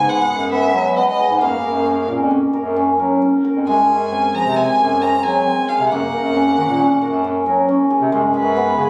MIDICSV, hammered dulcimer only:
0, 0, Header, 1, 2, 480
1, 0, Start_track
1, 0, Tempo, 448430
1, 1510, Time_signature, 5, 2, 24, 8
1, 6323, Tempo, 442152
1, 9570, End_track
2, 0, Start_track
2, 0, Title_t, "Hammered dulcimer"
2, 0, Program_c, 0, 15
2, 0, Note_on_c, 0, 56, 80
2, 0, Note_on_c, 0, 61, 61
2, 0, Note_on_c, 0, 68, 65
2, 83, Note_on_c, 0, 59, 62
2, 310, Note_off_c, 0, 68, 0
2, 315, Note_on_c, 0, 68, 67
2, 552, Note_off_c, 0, 59, 0
2, 556, Note_on_c, 0, 59, 75
2, 795, Note_off_c, 0, 68, 0
2, 799, Note_on_c, 0, 68, 63
2, 1030, Note_off_c, 0, 59, 0
2, 1035, Note_on_c, 0, 59, 64
2, 1270, Note_off_c, 0, 68, 0
2, 1274, Note_on_c, 0, 68, 60
2, 1509, Note_on_c, 0, 58, 81
2, 1564, Note_off_c, 0, 56, 0
2, 1573, Note_off_c, 0, 59, 0
2, 1749, Note_on_c, 0, 70, 60
2, 1983, Note_off_c, 0, 61, 0
2, 1988, Note_on_c, 0, 61, 65
2, 2224, Note_off_c, 0, 70, 0
2, 2228, Note_on_c, 0, 70, 58
2, 2465, Note_off_c, 0, 61, 0
2, 2470, Note_on_c, 0, 61, 58
2, 2707, Note_off_c, 0, 70, 0
2, 2712, Note_on_c, 0, 70, 63
2, 2954, Note_off_c, 0, 61, 0
2, 2959, Note_on_c, 0, 61, 66
2, 3199, Note_off_c, 0, 70, 0
2, 3203, Note_on_c, 0, 70, 55
2, 3441, Note_off_c, 0, 61, 0
2, 3446, Note_on_c, 0, 61, 54
2, 3684, Note_off_c, 0, 70, 0
2, 3689, Note_on_c, 0, 70, 58
2, 3928, Note_on_c, 0, 56, 74
2, 4168, Note_off_c, 0, 68, 0
2, 4173, Note_on_c, 0, 68, 58
2, 4405, Note_on_c, 0, 60, 56
2, 4469, Note_off_c, 0, 61, 0
2, 4646, Note_off_c, 0, 68, 0
2, 4650, Note_on_c, 0, 68, 55
2, 4887, Note_off_c, 0, 60, 0
2, 4891, Note_on_c, 0, 60, 61
2, 5127, Note_off_c, 0, 68, 0
2, 5131, Note_on_c, 0, 68, 61
2, 5374, Note_off_c, 0, 60, 0
2, 5378, Note_on_c, 0, 60, 67
2, 5611, Note_off_c, 0, 68, 0
2, 5615, Note_on_c, 0, 68, 60
2, 5853, Note_off_c, 0, 60, 0
2, 5857, Note_on_c, 0, 60, 57
2, 6093, Note_off_c, 0, 68, 0
2, 6097, Note_on_c, 0, 68, 61
2, 6098, Note_off_c, 0, 58, 0
2, 6333, Note_on_c, 0, 58, 79
2, 6377, Note_off_c, 0, 56, 0
2, 6566, Note_off_c, 0, 70, 0
2, 6571, Note_on_c, 0, 70, 59
2, 6814, Note_on_c, 0, 61, 65
2, 6879, Note_off_c, 0, 60, 0
2, 7052, Note_off_c, 0, 70, 0
2, 7056, Note_on_c, 0, 70, 57
2, 7287, Note_off_c, 0, 61, 0
2, 7292, Note_on_c, 0, 61, 66
2, 7522, Note_off_c, 0, 70, 0
2, 7527, Note_on_c, 0, 70, 64
2, 7768, Note_off_c, 0, 61, 0
2, 7773, Note_on_c, 0, 61, 68
2, 8006, Note_off_c, 0, 70, 0
2, 8010, Note_on_c, 0, 70, 59
2, 8250, Note_off_c, 0, 61, 0
2, 8254, Note_on_c, 0, 61, 64
2, 8487, Note_off_c, 0, 68, 0
2, 8491, Note_on_c, 0, 68, 66
2, 8728, Note_on_c, 0, 56, 78
2, 8959, Note_off_c, 0, 68, 0
2, 8963, Note_on_c, 0, 68, 61
2, 9209, Note_on_c, 0, 59, 67
2, 9274, Note_off_c, 0, 58, 0
2, 9274, Note_off_c, 0, 70, 0
2, 9440, Note_off_c, 0, 68, 0
2, 9444, Note_on_c, 0, 68, 65
2, 9570, Note_off_c, 0, 56, 0
2, 9570, Note_off_c, 0, 59, 0
2, 9570, Note_off_c, 0, 61, 0
2, 9570, Note_off_c, 0, 68, 0
2, 9570, End_track
0, 0, End_of_file